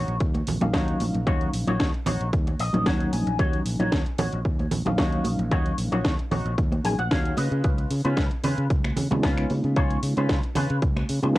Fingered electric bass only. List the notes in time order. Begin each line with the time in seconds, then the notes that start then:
0.08 A#1
0.21 D#2
0.47 A#1
0.61 A#1
0.74 D#2
1.00 A#1
1.15 A#1
1.27 D#2
1.53 A#1
1.67 A#1
1.80 D#2
2.07 A#1
2.20 A#1
2.33 D#2
2.59 A#1
2.74 A#1
2.86 D#2
3.13 A#1
3.27 A#1
3.39 D#2
3.66 A#1
3.80 A#1
3.92 D#2
4.19 A#1
4.33 A#1
4.45 D#2
4.72 A#1
4.86 A#1
4.98 D#2
5.25 A#1
5.39 A#1
5.52 D#2
5.78 A#1
5.92 A#1
6.05 D#2
6.31 A#1
6.45 A#1
6.58 D#2
6.84 A#1
6.98 A#1
7.11 D#2
7.37 C#3
7.51 C#3
7.64 C#2
7.90 C#3
8.05 C#3
8.17 C#2
8.43 C#3
8.58 C#3
8.70 C#2
8.97 C#3
9.11 C#3
9.23 C#2
9.50 C#3
9.64 C#3
9.76 C#2
10.02 C#3
10.17 C#3
10.29 C#2
10.56 C#3
10.70 C#3
10.82 C#2
11.10 C#3
11.23 C#3